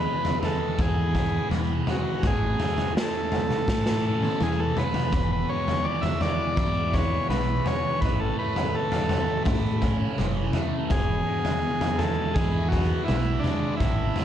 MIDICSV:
0, 0, Header, 1, 5, 480
1, 0, Start_track
1, 0, Tempo, 722892
1, 1487, Time_signature, 4, 2, 24, 8
1, 9461, End_track
2, 0, Start_track
2, 0, Title_t, "Transistor combo organ"
2, 0, Program_c, 0, 18
2, 0, Note_on_c, 0, 71, 96
2, 256, Note_off_c, 0, 71, 0
2, 296, Note_on_c, 0, 69, 78
2, 538, Note_off_c, 0, 69, 0
2, 538, Note_on_c, 0, 68, 66
2, 986, Note_off_c, 0, 68, 0
2, 1265, Note_on_c, 0, 66, 57
2, 1504, Note_off_c, 0, 66, 0
2, 1506, Note_on_c, 0, 68, 75
2, 1951, Note_off_c, 0, 68, 0
2, 1988, Note_on_c, 0, 69, 80
2, 2693, Note_off_c, 0, 69, 0
2, 2701, Note_on_c, 0, 69, 74
2, 2942, Note_off_c, 0, 69, 0
2, 2942, Note_on_c, 0, 68, 81
2, 3053, Note_on_c, 0, 69, 77
2, 3059, Note_off_c, 0, 68, 0
2, 3173, Note_on_c, 0, 71, 80
2, 3175, Note_off_c, 0, 69, 0
2, 3526, Note_off_c, 0, 71, 0
2, 3534, Note_on_c, 0, 71, 89
2, 3647, Note_on_c, 0, 73, 82
2, 3655, Note_off_c, 0, 71, 0
2, 3881, Note_on_c, 0, 74, 95
2, 3895, Note_off_c, 0, 73, 0
2, 3994, Note_on_c, 0, 76, 89
2, 4009, Note_off_c, 0, 74, 0
2, 4125, Note_off_c, 0, 76, 0
2, 4128, Note_on_c, 0, 74, 92
2, 4609, Note_on_c, 0, 73, 88
2, 4622, Note_off_c, 0, 74, 0
2, 4832, Note_off_c, 0, 73, 0
2, 4845, Note_on_c, 0, 71, 81
2, 5093, Note_on_c, 0, 73, 80
2, 5094, Note_off_c, 0, 71, 0
2, 5314, Note_off_c, 0, 73, 0
2, 5317, Note_on_c, 0, 71, 89
2, 5442, Note_on_c, 0, 69, 74
2, 5446, Note_off_c, 0, 71, 0
2, 5556, Note_off_c, 0, 69, 0
2, 5569, Note_on_c, 0, 71, 76
2, 5809, Note_on_c, 0, 69, 81
2, 5815, Note_off_c, 0, 71, 0
2, 6261, Note_off_c, 0, 69, 0
2, 7249, Note_on_c, 0, 68, 94
2, 7956, Note_on_c, 0, 69, 97
2, 7989, Note_off_c, 0, 68, 0
2, 8193, Note_on_c, 0, 68, 90
2, 8209, Note_off_c, 0, 69, 0
2, 8420, Note_on_c, 0, 66, 87
2, 8422, Note_off_c, 0, 68, 0
2, 8655, Note_off_c, 0, 66, 0
2, 8663, Note_on_c, 0, 64, 83
2, 8894, Note_on_c, 0, 62, 72
2, 8922, Note_off_c, 0, 64, 0
2, 9132, Note_off_c, 0, 62, 0
2, 9140, Note_on_c, 0, 64, 77
2, 9461, Note_off_c, 0, 64, 0
2, 9461, End_track
3, 0, Start_track
3, 0, Title_t, "Distorted electric guitar"
3, 0, Program_c, 1, 30
3, 0, Note_on_c, 1, 40, 65
3, 0, Note_on_c, 1, 56, 63
3, 0, Note_on_c, 1, 64, 70
3, 36, Note_on_c, 1, 52, 65
3, 276, Note_off_c, 1, 56, 0
3, 284, Note_on_c, 1, 56, 57
3, 513, Note_off_c, 1, 64, 0
3, 515, Note_on_c, 1, 64, 67
3, 759, Note_on_c, 1, 59, 60
3, 762, Note_off_c, 1, 40, 0
3, 1003, Note_off_c, 1, 52, 0
3, 1006, Note_on_c, 1, 52, 68
3, 1234, Note_off_c, 1, 56, 0
3, 1242, Note_on_c, 1, 56, 66
3, 1485, Note_off_c, 1, 56, 0
3, 1485, Note_off_c, 1, 59, 0
3, 1485, Note_on_c, 1, 45, 70
3, 1722, Note_on_c, 1, 57, 63
3, 1964, Note_off_c, 1, 52, 0
3, 1966, Note_on_c, 1, 52, 68
3, 2197, Note_off_c, 1, 57, 0
3, 2205, Note_on_c, 1, 57, 59
3, 2442, Note_off_c, 1, 64, 0
3, 2445, Note_on_c, 1, 64, 67
3, 2688, Note_off_c, 1, 45, 0
3, 2693, Note_on_c, 1, 61, 58
3, 2926, Note_off_c, 1, 52, 0
3, 2929, Note_on_c, 1, 52, 62
3, 3158, Note_off_c, 1, 57, 0
3, 3166, Note_on_c, 1, 57, 62
3, 3408, Note_off_c, 1, 57, 0
3, 3408, Note_on_c, 1, 40, 66
3, 3411, Note_off_c, 1, 61, 0
3, 3650, Note_on_c, 1, 56, 62
3, 3885, Note_off_c, 1, 52, 0
3, 3888, Note_on_c, 1, 52, 69
3, 4122, Note_off_c, 1, 56, 0
3, 4130, Note_on_c, 1, 56, 59
3, 4364, Note_off_c, 1, 64, 0
3, 4366, Note_on_c, 1, 64, 68
3, 4607, Note_on_c, 1, 59, 58
3, 4608, Note_off_c, 1, 40, 0
3, 4833, Note_off_c, 1, 52, 0
3, 4836, Note_on_c, 1, 52, 66
3, 5068, Note_off_c, 1, 56, 0
3, 5076, Note_on_c, 1, 56, 60
3, 5320, Note_on_c, 1, 45, 65
3, 5322, Note_off_c, 1, 56, 0
3, 5327, Note_off_c, 1, 59, 0
3, 5561, Note_on_c, 1, 57, 63
3, 5795, Note_off_c, 1, 52, 0
3, 5798, Note_on_c, 1, 52, 62
3, 6041, Note_off_c, 1, 57, 0
3, 6049, Note_on_c, 1, 57, 59
3, 6285, Note_off_c, 1, 64, 0
3, 6287, Note_on_c, 1, 64, 68
3, 6522, Note_on_c, 1, 61, 59
3, 6523, Note_off_c, 1, 45, 0
3, 6756, Note_off_c, 1, 52, 0
3, 6758, Note_on_c, 1, 52, 70
3, 6997, Note_off_c, 1, 57, 0
3, 7005, Note_on_c, 1, 57, 62
3, 7239, Note_on_c, 1, 40, 70
3, 7244, Note_off_c, 1, 61, 0
3, 7246, Note_off_c, 1, 57, 0
3, 7480, Note_on_c, 1, 56, 65
3, 7718, Note_off_c, 1, 52, 0
3, 7720, Note_on_c, 1, 52, 70
3, 7960, Note_off_c, 1, 56, 0
3, 7968, Note_on_c, 1, 56, 64
3, 8208, Note_off_c, 1, 64, 0
3, 8211, Note_on_c, 1, 64, 68
3, 8442, Note_off_c, 1, 40, 0
3, 8449, Note_on_c, 1, 59, 65
3, 8683, Note_off_c, 1, 52, 0
3, 8686, Note_on_c, 1, 52, 64
3, 8913, Note_off_c, 1, 56, 0
3, 8921, Note_on_c, 1, 56, 71
3, 9162, Note_on_c, 1, 45, 67
3, 9163, Note_off_c, 1, 56, 0
3, 9167, Note_off_c, 1, 59, 0
3, 9406, Note_on_c, 1, 57, 65
3, 9461, Note_off_c, 1, 45, 0
3, 9461, Note_off_c, 1, 52, 0
3, 9461, Note_off_c, 1, 57, 0
3, 9461, Note_off_c, 1, 64, 0
3, 9461, End_track
4, 0, Start_track
4, 0, Title_t, "Fingered electric bass"
4, 0, Program_c, 2, 33
4, 523, Note_on_c, 2, 40, 92
4, 922, Note_off_c, 2, 40, 0
4, 1004, Note_on_c, 2, 40, 78
4, 1204, Note_off_c, 2, 40, 0
4, 1484, Note_on_c, 2, 33, 82
4, 1684, Note_off_c, 2, 33, 0
4, 2442, Note_on_c, 2, 45, 91
4, 2842, Note_off_c, 2, 45, 0
4, 2928, Note_on_c, 2, 40, 86
4, 3127, Note_off_c, 2, 40, 0
4, 3406, Note_on_c, 2, 28, 86
4, 3605, Note_off_c, 2, 28, 0
4, 4363, Note_on_c, 2, 40, 83
4, 4762, Note_off_c, 2, 40, 0
4, 4842, Note_on_c, 2, 35, 81
4, 5043, Note_off_c, 2, 35, 0
4, 5325, Note_on_c, 2, 33, 89
4, 5524, Note_off_c, 2, 33, 0
4, 6284, Note_on_c, 2, 45, 90
4, 6682, Note_off_c, 2, 45, 0
4, 6768, Note_on_c, 2, 30, 81
4, 6966, Note_off_c, 2, 30, 0
4, 7242, Note_on_c, 2, 28, 88
4, 7442, Note_off_c, 2, 28, 0
4, 8205, Note_on_c, 2, 40, 92
4, 8602, Note_off_c, 2, 40, 0
4, 8696, Note_on_c, 2, 35, 81
4, 8890, Note_off_c, 2, 35, 0
4, 9167, Note_on_c, 2, 33, 91
4, 9364, Note_off_c, 2, 33, 0
4, 9461, End_track
5, 0, Start_track
5, 0, Title_t, "Drums"
5, 165, Note_on_c, 9, 43, 72
5, 231, Note_off_c, 9, 43, 0
5, 284, Note_on_c, 9, 43, 78
5, 350, Note_off_c, 9, 43, 0
5, 522, Note_on_c, 9, 36, 94
5, 527, Note_on_c, 9, 43, 73
5, 589, Note_off_c, 9, 36, 0
5, 594, Note_off_c, 9, 43, 0
5, 762, Note_on_c, 9, 36, 65
5, 765, Note_on_c, 9, 43, 70
5, 829, Note_off_c, 9, 36, 0
5, 832, Note_off_c, 9, 43, 0
5, 1005, Note_on_c, 9, 47, 72
5, 1071, Note_off_c, 9, 47, 0
5, 1243, Note_on_c, 9, 43, 73
5, 1309, Note_off_c, 9, 43, 0
5, 1482, Note_on_c, 9, 43, 75
5, 1483, Note_on_c, 9, 36, 97
5, 1548, Note_off_c, 9, 43, 0
5, 1549, Note_off_c, 9, 36, 0
5, 1724, Note_on_c, 9, 43, 72
5, 1790, Note_off_c, 9, 43, 0
5, 1845, Note_on_c, 9, 43, 72
5, 1911, Note_off_c, 9, 43, 0
5, 1973, Note_on_c, 9, 38, 68
5, 2039, Note_off_c, 9, 38, 0
5, 2203, Note_on_c, 9, 43, 78
5, 2270, Note_off_c, 9, 43, 0
5, 2327, Note_on_c, 9, 47, 71
5, 2394, Note_off_c, 9, 47, 0
5, 2443, Note_on_c, 9, 36, 99
5, 2447, Note_on_c, 9, 38, 53
5, 2509, Note_off_c, 9, 36, 0
5, 2513, Note_off_c, 9, 38, 0
5, 2564, Note_on_c, 9, 38, 51
5, 2630, Note_off_c, 9, 38, 0
5, 2805, Note_on_c, 9, 48, 57
5, 2872, Note_off_c, 9, 48, 0
5, 2925, Note_on_c, 9, 47, 75
5, 2991, Note_off_c, 9, 47, 0
5, 3166, Note_on_c, 9, 43, 75
5, 3232, Note_off_c, 9, 43, 0
5, 3281, Note_on_c, 9, 43, 77
5, 3348, Note_off_c, 9, 43, 0
5, 3401, Note_on_c, 9, 43, 72
5, 3404, Note_on_c, 9, 36, 94
5, 3468, Note_off_c, 9, 43, 0
5, 3471, Note_off_c, 9, 36, 0
5, 3771, Note_on_c, 9, 43, 73
5, 3837, Note_off_c, 9, 43, 0
5, 4004, Note_on_c, 9, 43, 74
5, 4070, Note_off_c, 9, 43, 0
5, 4123, Note_on_c, 9, 43, 79
5, 4189, Note_off_c, 9, 43, 0
5, 4363, Note_on_c, 9, 43, 73
5, 4365, Note_on_c, 9, 36, 109
5, 4430, Note_off_c, 9, 43, 0
5, 4431, Note_off_c, 9, 36, 0
5, 4606, Note_on_c, 9, 36, 67
5, 4608, Note_on_c, 9, 43, 74
5, 4672, Note_off_c, 9, 36, 0
5, 4675, Note_off_c, 9, 43, 0
5, 4850, Note_on_c, 9, 47, 77
5, 4917, Note_off_c, 9, 47, 0
5, 5084, Note_on_c, 9, 43, 76
5, 5151, Note_off_c, 9, 43, 0
5, 5325, Note_on_c, 9, 36, 96
5, 5328, Note_on_c, 9, 43, 69
5, 5391, Note_off_c, 9, 36, 0
5, 5395, Note_off_c, 9, 43, 0
5, 5686, Note_on_c, 9, 43, 78
5, 5752, Note_off_c, 9, 43, 0
5, 5921, Note_on_c, 9, 43, 76
5, 5987, Note_off_c, 9, 43, 0
5, 6038, Note_on_c, 9, 43, 86
5, 6104, Note_off_c, 9, 43, 0
5, 6277, Note_on_c, 9, 43, 83
5, 6282, Note_on_c, 9, 36, 107
5, 6344, Note_off_c, 9, 43, 0
5, 6348, Note_off_c, 9, 36, 0
5, 6519, Note_on_c, 9, 43, 72
5, 6522, Note_on_c, 9, 36, 68
5, 6585, Note_off_c, 9, 43, 0
5, 6588, Note_off_c, 9, 36, 0
5, 6760, Note_on_c, 9, 47, 76
5, 6826, Note_off_c, 9, 47, 0
5, 6994, Note_on_c, 9, 43, 80
5, 7060, Note_off_c, 9, 43, 0
5, 7238, Note_on_c, 9, 43, 69
5, 7242, Note_on_c, 9, 36, 99
5, 7305, Note_off_c, 9, 43, 0
5, 7309, Note_off_c, 9, 36, 0
5, 7601, Note_on_c, 9, 43, 77
5, 7668, Note_off_c, 9, 43, 0
5, 7843, Note_on_c, 9, 43, 77
5, 7909, Note_off_c, 9, 43, 0
5, 7961, Note_on_c, 9, 43, 81
5, 8028, Note_off_c, 9, 43, 0
5, 8205, Note_on_c, 9, 43, 77
5, 8206, Note_on_c, 9, 36, 101
5, 8272, Note_off_c, 9, 36, 0
5, 8272, Note_off_c, 9, 43, 0
5, 8447, Note_on_c, 9, 36, 65
5, 8453, Note_on_c, 9, 43, 72
5, 8514, Note_off_c, 9, 36, 0
5, 8519, Note_off_c, 9, 43, 0
5, 8686, Note_on_c, 9, 47, 78
5, 8753, Note_off_c, 9, 47, 0
5, 8925, Note_on_c, 9, 43, 75
5, 8992, Note_off_c, 9, 43, 0
5, 9166, Note_on_c, 9, 36, 90
5, 9167, Note_on_c, 9, 43, 69
5, 9233, Note_off_c, 9, 36, 0
5, 9234, Note_off_c, 9, 43, 0
5, 9401, Note_on_c, 9, 43, 72
5, 9461, Note_off_c, 9, 43, 0
5, 9461, End_track
0, 0, End_of_file